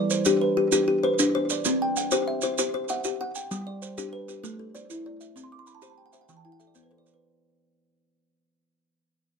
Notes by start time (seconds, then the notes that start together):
Already playing: G3 D5
0.10 C5, maracas
0.25 D4 G4, maracas
0.41 B4
0.57 G4
0.72 D4 G4, maracas
0.88 G4
1.03 B4 C5
1.19 D4, maracas
1.35 C5
1.50 D5, maracas
1.65 C4, maracas
1.82 G5
1.96 F#5, maracas
2.11 G4 C5, maracas
2.28 E5
2.41 C5, maracas
2.58 G4 C5, maracas
2.74 C5
2.88 E5 F#5, maracas
3.04 G4, maracas
3.21 F#5
3.35 G5, maracas
3.51 G3, maracas
3.67 D5
3.82 C5, maracas
3.98 D4 G4, maracas
4.13 B4
4.28 G4, maracas
4.44 A3 A4, maracas
4.59 A4
4.75 C5 D5, maracas
4.90 E4, maracas
5.06 D5
5.21 E5, maracas
5.36 C4, maracas
5.44 C6
5.52 D6
5.59 C6
5.67 B5, maracas
5.75 A5
5.82 G4 C5 B5, maracas
5.90 A5
5.98 G5
6.06 F#5
6.13 C5 E5, maracas
6.21 F#5
6.29 E3 G5, maracas
6.37 A5
6.45 E4 G5
6.52 F#5
6.60 A4 E5, maracas
6.67 D5
6.75 B3 C5, maracas
6.83 B4
6.91 A4 C5
6.98 D5
7.06 C5, maracas
7.14 B4